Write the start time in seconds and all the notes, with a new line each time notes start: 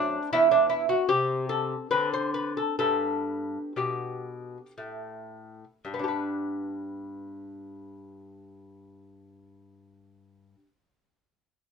Already playing: F#2 A3 D4
0.33 E2 B3 E4
0.51 D4
0.70 E4
0.89 F#4
1.09 C3 C4 G4
1.49 A4
1.91 D3 C4 B4
2.13 C5
2.34 B4
2.57 A4
2.79 G2 B3 A4
3.76 B2 G4
4.78 A2
5.85 G2
5.94 B3
5.99 D4
6.04 G4
6.08 B4